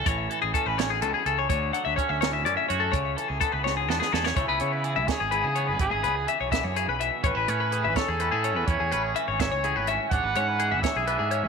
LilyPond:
<<
  \new Staff \with { instrumentName = "Clean electric guitar" } { \time 6/8 \key a \major \tempo 4. = 83 cis''8 a'16 gis'16 a'16 b'16 cis''16 gis'16 a'16 gis'16 a'16 cis''16 | cis''8 fis''16 e''16 cis''16 e''16 cis''16 e''16 d''16 e''16 cis''16 a'16 | cis''8 a'16 gis'16 a'16 b'16 cis''16 gis'16 a'16 gis'16 a'16 cis''16 | cis''16 b'16 cis''16 b'16 gis'16 e''16 cis''16 gis'16 b'16 gis'16 cis''16 b'16~ |
b'16 gis'16 b'16 gis'16 e''16 cis''16 e''16 cis''16 gis'16 b'16 e''8 | cis''16 b'16 cis''16 b'16 gis'16 e''16 cis''16 gis'16 b'16 gis'16 cis''16 b'16~ | b'16 gis'16 b'16 gis'16 e''16 cis''16 e''16 cis''16 gis'16 b'16 e''8 | cis''16 b'16 cis''16 b'16 gis'16 e''16 cis''16 gis'16 b'16 gis'16 cis''16 b'16 | }
  \new Staff \with { instrumentName = "Trumpet" } { \time 6/8 \key a \major r2. | r2. | r2. | e'4. gis'4. |
gis'4 r2 | b'4. a'4. | cis''4 r8 cis''4 r8 | fis''4. e''4. | }
  \new Staff \with { instrumentName = "Clean electric guitar" } { \clef bass \time 6/8 \key a \major << { r4 cis'2 | r4 cis'4 cis'8 fis'8 | r4 b4 b8 gis'8 | a16 b16 b4. e'8 b8 |
e'8 b2~ b8 | cis'16 e'16 cis'4. cis'16 e'16 cis'8 | e'8 cis'4. e'8 cis'8 | d'8 cis'4. d'8 cis'8 | } \\ { <a, e>8 e4 a,8 b,8 cis8 | d8 fis4 a,4. | cis8 e4 gis,4. | cis4 e4 gis,4 |
cis4 e8 d8 cis8 b,8 | a,4 e4 a,4 | a,4 e4 a,4 | gis,4 e4 gis,4 | } >> }
  \new Staff \with { instrumentName = "Fingered electric bass" } { \clef bass \time 6/8 \key a \major a,,8 r16 a,,16 r16 a,,8. cis,16 r16 cis,8 | d,8 r16 d,16 r16 d,8. fis,16 r16 fis,8 | cis,8 r16 cis,16 r16 cis,8. e,16 r16 e,8 | cis,16 cis,16 cis8. cis,16 r16 gis,,8 cis8 gis,,16 |
gis,,16 gis,,16 cis,8 r16 b,,8 fis,8 b,,8 r16 | a,,16 a,,16 a,8. a,,16 r16 e,8 a,8 e,16 | e,16 e,16 a,,8 r16 gis,,8 cis,8 gis,,8 r16 | gis,,16 gis,,16 gis,8. gis,,16 r16 b,,8 gis,8 b,,16 | }
  \new DrumStaff \with { instrumentName = "Drums" } \drummode { \time 6/8 <hh bd>8 hh8 <hh bd>8 <hh sn>8 hh8 hh8 | <hh bd>8 hh8 <hh bd>8 <hh sn>8 hh8 hh8 | <hh bd>8 hh8 <hh bd>8 sn8 sn16 sn16 sn16 sn16 | <hh bd>8 hh8 hh8 <hh bd sn>8 hh8 hh8 |
<hh bd>8 hh8 hh8 <hh bd sn>8 hh8 hh8 | <hh bd>8 hh8 hh8 <hh bd sn>8 hh8 hh8 | <hh bd>8 hh8 hh8 <hh bd sn>8 hh8 hh8 | <hh bd>8 hh8 hh8 <hh bd sn>8 hh8 hh8 | }
>>